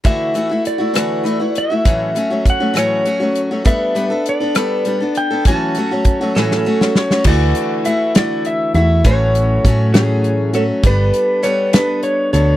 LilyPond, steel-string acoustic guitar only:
\new Staff \with { instrumentName = "Steel-string acoustic guitar" } { \time 6/8 \key d \lydian \tempo 4. = 67 <d e a e' fis'>8 <e a e' fis'>16 <a e' fis'>8 <a e' fis'>16 <d e a e' fis'>8 <e a e' fis'>16 <a e' fis'>8 <a e' fis'>16 | <a, e fis a cis' fis'>8 <fis a cis' fis'>16 <fis a cis' fis'>8 <fis a cis' fis'>16 <a, e fis a cis' fis'>8 <fis a cis' fis'>16 <fis a cis' fis'>8 <fis a cis' fis'>16 | <g b d' a'>8 <g b d' a'>16 <b d' a'>8 <b d' a'>16 <g b d' a'>8 <g b d' a'>16 <b d' a'>8 <b d' a'>16 | <a, e fis a cis' fis'>8 <fis a cis' fis'>16 <fis a cis' fis'>8 <fis a cis' fis'>16 <a, e fis a cis' fis'>8 <fis a cis' fis'>16 <fis a cis' fis'>8 <fis a cis' fis'>16 |
<d e a e' fis'>4 <e a e' fis'>8 <d e a e' fis'>4 <a e' fis'>8 | <a, e fis a cis' fis'>4 <fis a cis' fis'>8 <a, e fis a cis' fis'>4 <fis a cis' fis'>8 | <g b d' a'>4 <g b d' a'>8 <g b d' a'>4 <b d' a'>8 | }